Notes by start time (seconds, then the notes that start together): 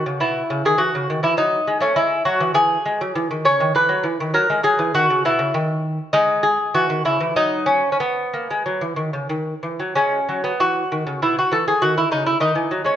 Already playing: F#4
0.06 C#3
0.20 B2 E4
0.50 C#3
0.65 D#3 G#4
0.78 E3 F#4
0.95 C#3
1.10 D#3
1.23 E3 E4
1.37 F#3 D#4
1.67 G#3
1.80 A3 C#4
1.96 G#3 E4
2.25 F#3 F#4
2.40 E3
2.54 E3 G#4
2.86 G#3
3.01 F#3
3.15 E3
3.31 D#3
3.45 C#3 C#5
3.60 D#3
3.75 E3 B4
3.89 F#3
4.04 E3
4.20 D#3
4.34 F#3 A#4
4.50 G#3
4.63 F#3 G#4
4.79 E3
4.94 D#3 F#4
5.10 C#3
5.25 B2 E4
5.39 C#3
5.54 D#3
6.13 G#3 D#4
6.43 G#4
6.74 E3 F#4
6.90 D#3
7.05 C#3 E4
7.21 E3
7.36 F#3 D#4
7.66 C#4
7.92 C#4
8.00 B3
8.34 A#3
8.51 G#3
8.66 F#3
8.81 E3
8.96 D#3
9.13 C#3
9.29 D#3
9.63 E3
9.80 F#3
9.95 G#3 C#4
10.29 F#3
10.44 B3
10.60 E3 F#4
10.92 D#3
11.07 C#3
11.22 B2 E4
11.39 F#4
11.52 E3 A4
11.68 G#4
11.82 D#3 F#4
11.98 E4
12.11 C#3 D#4
12.26 E4
12.40 D#3 D#4
12.55 E3
12.71 F#3
12.85 G#3 C#4